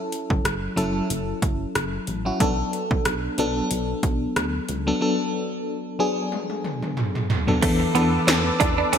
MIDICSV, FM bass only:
0, 0, Header, 1, 2, 480
1, 0, Start_track
1, 0, Tempo, 652174
1, 1770, Time_signature, 4, 2, 24, 8
1, 6609, End_track
2, 0, Start_track
2, 0, Title_t, "FM bass"
2, 0, Program_c, 0, 39
2, 223, Note_on_c, 0, 30, 84
2, 300, Note_off_c, 0, 30, 0
2, 330, Note_on_c, 0, 30, 101
2, 503, Note_off_c, 0, 30, 0
2, 570, Note_on_c, 0, 30, 93
2, 743, Note_off_c, 0, 30, 0
2, 812, Note_on_c, 0, 30, 103
2, 984, Note_off_c, 0, 30, 0
2, 1047, Note_on_c, 0, 30, 100
2, 1221, Note_off_c, 0, 30, 0
2, 1292, Note_on_c, 0, 30, 99
2, 1464, Note_off_c, 0, 30, 0
2, 1530, Note_on_c, 0, 33, 88
2, 1702, Note_off_c, 0, 33, 0
2, 1768, Note_on_c, 0, 35, 93
2, 1941, Note_off_c, 0, 35, 0
2, 2140, Note_on_c, 0, 35, 90
2, 2219, Note_off_c, 0, 35, 0
2, 2250, Note_on_c, 0, 35, 99
2, 2423, Note_off_c, 0, 35, 0
2, 2488, Note_on_c, 0, 35, 96
2, 2661, Note_off_c, 0, 35, 0
2, 2731, Note_on_c, 0, 35, 94
2, 2904, Note_off_c, 0, 35, 0
2, 2968, Note_on_c, 0, 35, 97
2, 3141, Note_off_c, 0, 35, 0
2, 3212, Note_on_c, 0, 38, 97
2, 3384, Note_off_c, 0, 38, 0
2, 3452, Note_on_c, 0, 37, 91
2, 3624, Note_off_c, 0, 37, 0
2, 5613, Note_on_c, 0, 40, 101
2, 5785, Note_off_c, 0, 40, 0
2, 5852, Note_on_c, 0, 40, 103
2, 6024, Note_off_c, 0, 40, 0
2, 6090, Note_on_c, 0, 40, 107
2, 6263, Note_off_c, 0, 40, 0
2, 6334, Note_on_c, 0, 40, 96
2, 6506, Note_off_c, 0, 40, 0
2, 6575, Note_on_c, 0, 40, 108
2, 6609, Note_off_c, 0, 40, 0
2, 6609, End_track
0, 0, End_of_file